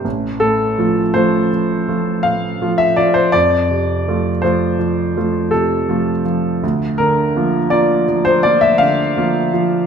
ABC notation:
X:1
M:9/8
L:1/16
Q:3/8=55
K:F
V:1 name="Grand piano"
z2 A4 c6 f3 e d c | d6 c6 A6 | z2 B4 d3 c d e f6 |]
V:2 name="Grand piano" clef=bass
A,,,2 A,,2 [F,A,F]2 [F,A,F]2 F,2 [F,A,F]2 A,,2 [F,A,F]2 F,2 | F,,2 C,2 [F,A,F]2 [F,A,F]2 F,2 [F,A,F]2 C,2 [F,A,F]2 F,2 | D,,2 D,2 [F,B,F]2 [F,B,F]2 F,2 [F,B,F]2 D,2 [F,B,F]2 F,2 |]